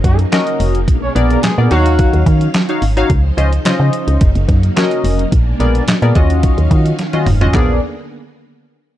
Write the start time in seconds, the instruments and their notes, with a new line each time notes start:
Already playing: string machine C#3 F#3 A#3 D#4
0.04 fm bass F#2, horn section F#3 F#4, kick, closed hi-hat
0.19 closed hi-hat
0.32 analog polysynth C#4 F#4 A#4 D#5, snare, clap, closed hi-hat
0.47 closed hi-hat
0.60 fm bass F1, open hi-hat
0.75 closed hi-hat
0.88 fm bass A#1, string machine B2 G#3 D4, kick, closed hi-hat
1.02 horn section C#4 C#5
1.15 fm bass A#1, analog polysynth B3 G#4 A#4 D5, closed hi-hat
1.30 horn section A#3 A#4, closed hi-hat
1.43 fm bass A#2, horn section G#3 G#4, snare, clap, closed hi-hat
1.58 fm bass A#2, analog polysynth B3 G#4 A#4 D5
1.71 fm bass D#2, string machine D#3 F#3 C#4 F5, horn section F#3 F#4, analog polysynth D#4 F#4 C#5 F5, closed hi-hat
1.86 closed hi-hat
1.99 kick, closed hi-hat
2.13 fm bass D#2, closed hi-hat
2.26 fm bass D#3, kick, closed hi-hat
2.41 closed hi-hat
2.54 snare, clap, closed hi-hat
2.69 analog polysynth D#4 F#4 C#5 F5, closed hi-hat
2.82 fm bass G#1, open hi-hat
2.97 analog polysynth D#4 F#4 C#5 F5, closed hi-hat
3.10 fm bass C#2, string machine C#3 F3 D#4 C5, kick, closed hi-hat
3.37 fm bass C#2, analog polysynth C#4 F4 C5 D#5, closed hi-hat
3.53 closed hi-hat
3.65 fm bass C#3, analog polysynth C#4 F4 C5 D#5, snare, clap, closed hi-hat
3.80 fm bass C#3
3.93 closed hi-hat
4.08 fm bass C#2, closed hi-hat
4.21 fm bass F#1, string machine F#3 A#3, kick, closed hi-hat
4.35 fm bass F#1, closed hi-hat
4.49 fm bass F#2, kick, closed hi-hat
4.63 closed hi-hat
4.76 analog polysynth C#4 F#4 A#4 C#5, snare, clap, closed hi-hat
4.83 analog polysynth D#5
4.91 closed hi-hat
5.04 fm bass F1, open hi-hat
5.19 closed hi-hat
5.32 fm bass A#1, string machine B2 G#3 D4, kick, closed hi-hat
5.60 fm bass A#1, analog polysynth B3 G#4 A#4 D5, closed hi-hat
5.75 closed hi-hat
5.88 fm bass A#2, snare, clap, closed hi-hat
6.02 fm bass A#2, analog polysynth B3 G#4 A#4 D5, closed hi-hat
6.15 fm bass D#2, string machine D#3 F#3 C#4 F5, analog polysynth C#4 F4 F#4 D#5, kick, closed hi-hat
6.30 closed hi-hat
6.43 kick, closed hi-hat
6.58 fm bass D#2, closed hi-hat
6.71 fm bass D#3, kick, closed hi-hat
6.86 closed hi-hat
6.99 snare, closed hi-hat
7.13 analog polysynth C#4 F4 F#4 D#5, closed hi-hat, high tom
7.26 fm bass F1, mid tom, open hi-hat
7.41 analog polysynth C#4 F4 F#4 D#5, closed hi-hat, floor tom
7.54 fm bass A#1, string machine D3 A#3 B3 G#4, horn section F3 D4 G#4, analog polysynth B3 G#4 A#4 D5, kick, clap